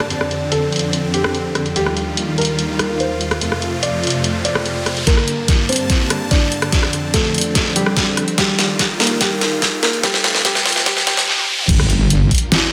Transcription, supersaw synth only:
Already playing: D3 A5
0.10 F2 C4
1.76 D#2 D#3 G3 F4
3.41 F2 C3 A3
5.07 G2 D3 A#3 A5
6.72 F2 C4
8.38 D#2 D#3 G3 F4
10.04 F2 C3 A3
11.69 G3 D4 F4 A#4

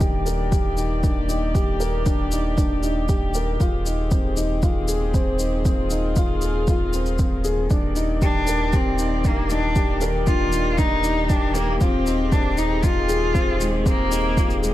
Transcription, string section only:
Already playing: D#3 A#3 G4 D5
3.59 D#3 C4 G#4
5.64 F4
7.70 A#3 G4 D5
11.81 C4 G#4

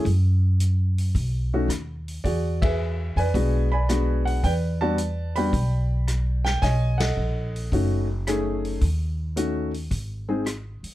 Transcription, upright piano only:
1.53 A3 C#4 D#4 F#4
2.24 F#4 G#4 D5
2.62 G#4 B4 E5
3.17 B4 D5 G#5
3.35 G#3 B3 D4 F#4
3.72 D5 G#5 B5
3.89 G#3 B3 D4 F#4
4.25 F#5
4.44 B4 D5 G5
4.81 G3 B3 D4 F#4 D5 A5
5.36 G3 B3 D4 F#4 D5 G5 B5
6.45 G5
6.62 C#5 D#5 G#5
6.98 A4 D#5 F#5
7.72 A3 C#4 D#4 F#4
8.28 A3 C#4 D#4 G#4
9.36 A3 C#4 D#4 F#4
10.29 G#3 C4 D#4 G#4

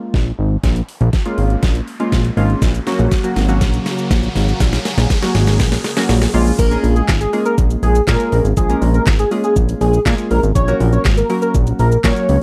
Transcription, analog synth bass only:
0.14 A#1
0.39 G#1
0.64 A#1
1.01 A#1
1.38 G#1
1.63 A#1
2.12 A#1
2.37 G#1
2.62 A#1
2.99 A#1
3.36 G#1
3.61 A#1
4.11 A#1
4.35 G#1
4.60 A#1
4.97 A#1
5.35 G#1
5.60 A#1
6.09 A#1
6.34 A#1
6.59 A#1
6.84 A#1
7.09 G#1
7.58 A#1
7.83 A#1
8.07 A#2
8.32 A#1
8.45 G#1
8.57 A#1
8.82 A#1
9.07 G#1
9.56 A#1
9.81 A#1
10.06 A#2
10.31 A#1
10.43 G#1
10.55 A#1
10.80 A#1
11.05 G#1
11.55 A#1
11.79 A#1
12.04 A#2
12.29 C#2

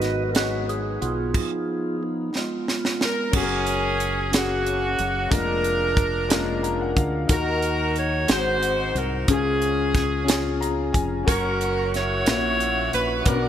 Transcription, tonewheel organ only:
Already playing: F#4 B4 D#5
0.29 A#4
0.37 B4
0.69 G#4
1.02 B3 F4 G#4
1.36 F3 B3 D#4
2.03 D#4
2.36 G#3 B3 F4
11.27 F#4 C#5 F#5 C#6
12.27 E5 F#5 C#6
13.26 B3 D5 D6

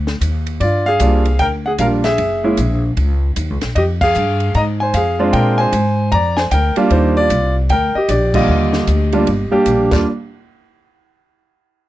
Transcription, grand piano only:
0.60 F4 D5
0.86 G#4 F5
1.01 G3 A#3 D4 F4
1.39 A#4 G5
1.66 G#4 F#5
1.80 G3 A#3 D4 F4 A#4 F5
2.04 G#4 E5
2.44 G#3 A#3 C#4 E4
3.75 G4 D#5
4.01 G#4 F5
4.55 D#5 A#5
4.80 C5 G#5
4.94 G#4 F5
5.19 G#3 C4 D4 F4
5.33 A#4 G5
5.58 C5 G#5
6.12 D5 A#5
6.37 C5 G#5
6.52 A#4 G5
6.77 G3 A#3 D4 F4
6.91 D#4 C5
7.17 F4 D5
7.70 A#4 G5
7.95 G4 D#5
8.09 G4 D5
8.35 D3 G3 A#3 F4 G4 D#5
9.13 G3 A#3 D4 F4
9.51 G3 A#3 D4 G4
9.91 G3 A#3 D4 F4

